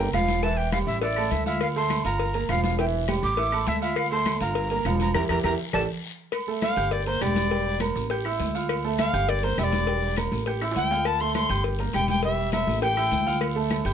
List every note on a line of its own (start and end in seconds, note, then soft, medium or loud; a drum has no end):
0.00 0.11 G1 loud
0.00 0.11 A#3 medium
0.00 0.11 A#4 medium
0.00 0.10 G5 medium
0.00 0.12 A#5 medium
0.13 0.82 E1 medium
0.13 0.38 F3 medium
0.13 0.38 F4 medium
0.13 0.44 F5 loud
0.13 0.38 F5 medium
0.13 cowbell medium
0.13 high conga medium
0.13 low timbale medium
0.13 low agogo medium
0.13 short guiro medium
0.13 claves medium
0.28 cowbell medium
0.28 high conga medium
0.28 low agogo medium
0.28 short guiro medium
0.43 0.68 E3 medium
0.43 0.68 E4 medium
0.43 0.68 E5 medium
0.43 0.59 A5 loud
0.43 cowbell loud
0.43 high conga soft
0.43 long guiro medium
0.57 0.72 G5 medium
0.57 high conga soft
0.72 0.97 G3 medium
0.72 0.97 G4 medium
0.72 0.79 F5 loud
0.72 0.97 G5 medium
0.72 cowbell medium
0.72 high conga loud
0.72 low agogo loud
0.72 short guiro medium
0.72 claves medium
0.87 1.28 A1 loud
0.87 1.01 E5 medium
0.87 high conga soft
0.87 short guiro medium
1.01 1.14 E4 medium
1.01 1.33 D5 medium
1.01 1.14 E5 medium
1.01 1.15 E6 medium
1.01 cowbell loud
1.01 high conga soft
1.01 low agogo medium
1.01 long guiro medium
1.16 1.41 A3 medium
1.16 1.41 A4 medium
1.16 1.42 A5 medium
1.16 high conga soft
1.16 low agogo loud
1.16 claves medium
1.31 1.99 D2 medium
1.31 1.46 E5 medium
1.31 cowbell medium
1.31 high conga medium
1.31 short guiro medium
1.46 1.70 F4 medium
1.46 1.60 E5 medium
1.46 1.71 F5 medium
1.46 1.71 F6 medium
1.46 high conga medium
1.46 low agogo medium
1.46 short guiro medium
1.61 1.68 F5 medium
1.61 cowbell loud
1.61 high conga soft
1.61 low agogo loud
1.61 long guiro medium
1.61 claves medium
1.76 2.00 A3 medium
1.76 2.00 A4 medium
1.76 2.00 A5 medium
1.76 2.03 C6 loud
1.76 high conga soft
1.90 cowbell medium
1.90 high conga loud
1.90 low agogo loud
1.90 short guiro medium
1.90 claves medium
2.05 2.46 G1 loud
2.05 2.29 F4 medium
2.05 2.29 F5 medium
2.05 2.46 A#5 medium
2.05 2.29 F6 medium
2.05 cowbell medium
2.05 high conga soft
2.05 low agogo loud
2.05 short guiro medium
2.19 cowbell loud
2.19 high conga soft
2.19 long guiro medium
2.34 2.47 A#3 medium
2.34 2.47 A#4 medium
2.34 2.47 A#5 medium
2.34 cowbell medium
2.34 high conga soft
2.49 3.17 E1 medium
2.49 2.73 F3 medium
2.49 2.73 F4 medium
2.49 2.74 F5 medium
2.49 2.63 F5 loud
2.49 cowbell medium
2.49 high conga medium
2.49 low agogo loud
2.49 short guiro medium
2.49 claves medium
2.64 2.78 F5 medium
2.64 cowbell medium
2.64 high conga medium
2.64 low agogo loud
2.64 short guiro medium
2.78 3.03 E3 medium
2.78 3.03 E4 medium
2.78 3.03 E5 medium
2.78 2.85 G5 medium
2.78 cowbell loud
2.78 high conga soft
2.78 long guiro medium
2.94 high conga soft
3.08 3.32 G3 medium
3.08 3.32 G4 medium
3.08 3.33 G5 medium
3.08 cowbell medium
3.08 high conga loud
3.08 low agogo loud
3.08 short guiro medium
3.08 claves medium
3.23 3.64 A1 loud
3.23 3.69 D6 loud
3.23 high conga soft
3.23 short guiro medium
3.37 3.50 E4 medium
3.37 3.50 E5 medium
3.37 3.50 E6 medium
3.37 cowbell loud
3.37 high conga soft
3.37 low agogo medium
3.37 long guiro medium
3.52 3.77 A3 medium
3.52 3.77 A4 medium
3.52 3.77 A5 medium
3.52 high conga soft
3.52 low agogo loud
3.52 claves medium
3.67 4.35 D2 medium
3.67 3.82 E5 loud
3.67 cowbell medium
3.67 high conga medium
3.67 low timbale medium
3.67 short guiro medium
3.82 4.06 F4 medium
3.82 3.98 E5 medium
3.82 4.06 F5 medium
3.82 4.07 F6 medium
3.82 low agogo loud
3.82 short guiro medium
3.96 4.10 F5 loud
3.96 cowbell loud
3.96 high conga soft
3.96 low agogo loud
3.96 long guiro medium
3.96 claves medium
4.11 4.36 A3 medium
4.11 4.36 A4 medium
4.11 4.36 A5 medium
4.11 4.39 C6 loud
4.11 high conga soft
4.26 cowbell medium
4.26 high conga loud
4.26 low agogo loud
4.26 short guiro medium
4.26 claves medium
4.40 4.82 G1 medium
4.40 4.65 F4 medium
4.40 4.66 F5 medium
4.40 4.96 A#5 medium
4.40 4.66 F6 medium
4.40 cowbell medium
4.40 high conga soft
4.40 low agogo medium
4.40 short guiro medium
4.55 cowbell loud
4.55 high conga soft
4.55 long guiro medium
4.70 4.83 A#3 medium
4.70 4.83 A#4 medium
4.70 4.83 A#5 medium
4.70 cowbell medium
4.70 high conga soft
4.85 5.12 E1 medium
4.85 5.10 F3 medium
4.85 5.10 F4 medium
4.85 5.10 F5 medium
4.85 cowbell medium
4.85 high conga medium
4.85 low timbale medium
4.85 low agogo medium
4.85 short guiro medium
4.85 claves medium
5.00 5.14 A#5 loud
5.00 cowbell medium
5.00 high conga medium
5.00 low agogo medium
5.00 short guiro medium
5.14 5.26 E2 medium
5.14 5.24 E4 medium
5.14 5.24 G4 loud
5.14 5.24 A#4 medium
5.14 5.24 A#5 loud
5.14 cowbell loud
5.14 low conga loud
5.14 high timbale loud
5.14 long guiro medium
5.14 claves loud
5.29 5.40 E2 medium
5.29 5.39 E4 loud
5.29 5.39 G4 loud
5.29 5.39 A#4 loud
5.29 5.39 A#5 medium
5.29 cowbell loud
5.29 low conga loud
5.29 high timbale loud
5.29 long guiro loud
5.29 claves loud
5.44 5.55 E2 loud
5.44 5.54 E4 loud
5.44 5.54 G4 loud
5.44 5.54 A#4 medium
5.44 5.54 A#5 loud
5.44 cowbell loud
5.44 low conga loud
5.44 high timbale medium
5.44 long guiro loud
5.44 claves loud
5.73 5.85 A1 medium
5.73 5.83 G4 loud
5.73 5.83 A4 loud
5.73 5.83 D5 loud
5.73 5.83 A5 medium
5.73 cowbell medium
5.73 low conga loud
5.73 high timbale loud
5.73 long guiro loud
5.73 claves medium
6.32 cowbell loud
6.32 high conga soft
6.32 low agogo loud
6.32 long guiro medium
6.32 claves medium
6.47 6.72 A3 medium
6.47 6.72 A4 medium
6.47 6.72 A5 medium
6.47 high conga soft
6.62 6.94 F5 loud
6.62 cowbell medium
6.62 high conga loud
6.62 low agogo loud
6.62 short guiro medium
6.62 claves medium
6.76 7.18 G1 medium
6.76 7.01 G4 medium
6.76 7.01 G5 medium
6.76 7.01 G6 medium
6.76 cowbell medium
6.76 high conga soft
6.76 low agogo medium
6.76 short guiro medium
6.91 7.06 D5 medium
6.91 cowbell loud
6.91 high conga soft
6.91 long guiro medium
7.06 7.19 A#3 medium
7.06 7.19 A#4 medium
7.06 7.23 C5 medium
7.06 7.19 A#5 medium
7.06 cowbell medium
7.06 high conga soft
7.21 7.90 E1 medium
7.21 7.46 G3 medium
7.21 7.46 G4 medium
7.21 7.79 D5 medium
7.21 7.46 G5 medium
7.21 cowbell medium
7.21 high conga medium
7.21 low timbale medium
7.21 low agogo medium
7.21 short guiro medium
7.21 claves medium
7.36 cowbell medium
7.36 high conga loud
7.36 low agogo loud
7.36 short guiro medium
7.51 7.75 G3 medium
7.51 7.75 G4 medium
7.51 7.76 G5 medium
7.51 cowbell loud
7.51 high conga soft
7.51 long guiro medium
7.66 high conga soft
7.80 8.05 A#3 medium
7.80 8.05 A#4 medium
7.80 8.05 A#5 medium
7.80 cowbell medium
7.80 high conga loud
7.80 low agogo loud
7.80 short guiro medium
7.80 claves medium
7.95 8.37 A1 loud
7.95 high conga soft
7.95 short guiro medium
8.10 8.22 G4 medium
8.10 8.22 G5 medium
8.10 8.23 G6 medium
8.10 cowbell loud
8.10 high conga soft
8.10 low agogo medium
8.10 long guiro medium
8.25 8.49 E4 medium
8.25 8.50 E5 medium
8.25 8.50 E6 medium
8.25 high conga soft
8.25 low agogo loud
8.25 claves medium
8.40 9.08 D2 medium
8.40 cowbell medium
8.40 high conga medium
8.40 low timbale medium
8.40 short guiro medium
8.55 8.79 F4 medium
8.55 8.79 F5 medium
8.55 8.79 F6 medium
8.55 low agogo medium
8.55 short guiro medium
8.69 cowbell loud
8.69 high conga soft
8.69 low agogo loud
8.69 long guiro medium
8.69 claves medium
8.84 9.08 A3 medium
8.84 9.08 A4 medium
8.84 9.09 A5 medium
8.84 high conga soft
8.99 9.30 F5 loud
8.99 cowbell medium
8.99 high conga loud
8.99 low agogo loud
8.99 short guiro medium
8.99 claves medium
9.13 9.55 G1 loud
9.13 9.38 G4 medium
9.13 9.38 G5 medium
9.13 9.38 G6 medium
9.13 cowbell medium
9.13 high conga soft
9.13 low agogo medium
9.13 short guiro medium
9.28 9.45 D5 medium
9.28 cowbell loud
9.28 high conga soft
9.28 long guiro medium
9.43 9.55 A#3 medium
9.43 9.55 A#4 medium
9.43 9.60 C5 medium
9.43 9.56 A#5 medium
9.43 cowbell medium
9.43 high conga soft
9.58 10.26 E1 medium
9.58 9.82 G3 medium
9.58 9.82 G4 medium
9.58 9.64 E5 loud
9.58 9.82 G5 medium
9.58 cowbell medium
9.58 high conga medium
9.58 low timbale medium
9.58 low agogo loud
9.58 short guiro medium
9.58 claves medium
9.63 10.16 D5 loud
9.72 cowbell medium
9.72 high conga loud
9.72 low agogo loud
9.72 short guiro medium
9.87 10.12 G3 medium
9.87 10.12 G4 medium
9.87 10.12 G5 medium
9.87 cowbell loud
9.87 high conga soft
9.87 long guiro medium
10.02 high conga soft
10.17 10.41 A#3 medium
10.17 10.42 A#4 medium
10.17 10.42 A#5 medium
10.17 cowbell medium
10.17 high conga loud
10.17 low agogo loud
10.17 short guiro medium
10.17 claves medium
10.32 10.73 A1 loud
10.32 high conga soft
10.32 short guiro medium
10.46 10.59 G4 medium
10.46 10.59 G5 medium
10.46 10.59 G6 medium
10.46 cowbell loud
10.46 high conga soft
10.46 low agogo medium
10.46 long guiro medium
10.61 10.86 E4 medium
10.61 10.86 E5 medium
10.61 10.86 E6 medium
10.61 high conga soft
10.61 high timbale loud
10.61 low agogo loud
10.61 claves medium
10.71 high timbale loud
10.76 11.44 D2 medium
10.76 11.08 G5 loud
10.76 cowbell medium
10.76 high conga medium
10.76 short guiro medium
10.91 11.15 F4 medium
10.91 11.15 F5 medium
10.91 11.15 F6 medium
10.91 low timbale medium
10.91 low agogo medium
10.91 short guiro medium
11.05 11.22 A5 loud
11.05 cowbell loud
11.05 high conga soft
11.05 low agogo loud
11.05 long guiro medium
11.05 claves medium
11.20 11.45 A3 medium
11.20 11.45 A4 medium
11.20 11.45 A5 medium
11.20 11.35 C6 medium
11.20 high conga soft
11.35 11.64 C6 loud
11.35 cowbell medium
11.35 high conga loud
11.35 low agogo loud
11.35 short guiro medium
11.35 claves medium
11.49 11.91 G1 loud
11.49 11.74 G4 medium
11.49 11.74 G5 medium
11.49 11.74 G6 medium
11.49 cowbell medium
11.49 high conga soft
11.49 low agogo medium
11.49 short guiro medium
11.64 cowbell loud
11.64 high conga soft
11.64 long guiro medium
11.79 11.91 A#3 medium
11.79 11.92 A#4 medium
11.79 11.92 A#5 medium
11.79 cowbell medium
11.79 high conga soft
11.93 12.62 E1 medium
11.93 12.18 G3 medium
11.93 12.19 G4 medium
11.93 12.08 G5 loud
11.93 12.19 G5 medium
11.93 cowbell medium
11.93 high conga medium
11.93 low timbale medium
11.93 low agogo loud
11.93 short guiro medium
11.93 claves medium
12.08 12.23 G5 loud
12.08 cowbell medium
12.08 high conga medium
12.08 low agogo medium
12.08 short guiro medium
12.23 12.48 G3 medium
12.23 12.48 G4 medium
12.23 12.52 E5 loud
12.23 12.48 G5 medium
12.23 cowbell loud
12.23 high conga soft
12.38 high conga soft
12.52 12.77 A#3 medium
12.52 12.77 A#4 medium
12.52 12.81 E5 loud
12.52 12.77 A#5 medium
12.52 cowbell medium
12.52 high conga loud
12.52 low agogo loud
12.52 short guiro medium
12.52 claves medium
12.67 13.09 A1 loud
12.67 high conga soft
12.67 short guiro medium
12.82 12.94 G4 medium
12.82 13.39 G5 loud
12.82 12.94 G5 medium
12.82 12.95 G6 medium
12.82 cowbell loud
12.82 high conga soft
12.82 low agogo medium
12.82 long guiro medium
12.97 13.21 E4 medium
12.97 13.21 E5 medium
12.97 13.21 E6 medium
12.97 high conga soft
12.97 low agogo loud
12.97 claves medium
13.11 13.80 D2 medium
13.11 cowbell medium
13.11 high conga medium
13.11 short guiro medium
13.26 13.51 F4 medium
13.26 13.51 F5 medium
13.26 13.51 F6 medium
13.26 high conga medium
13.26 low agogo medium
13.26 short guiro medium
13.41 cowbell loud
13.41 high conga soft
13.41 low agogo loud
13.41 long guiro medium
13.41 claves medium
13.55 13.80 A3 medium
13.55 13.80 A4 medium
13.55 13.80 A5 medium
13.55 high conga soft
13.70 cowbell medium
13.70 high conga loud
13.70 low agogo loud
13.70 short guiro medium
13.70 claves medium
13.85 13.93 G1 loud
13.85 13.93 G4 medium
13.85 13.93 G5 medium
13.85 13.93 G6 medium
13.85 cowbell medium
13.85 high conga soft
13.85 low agogo medium
13.85 short guiro medium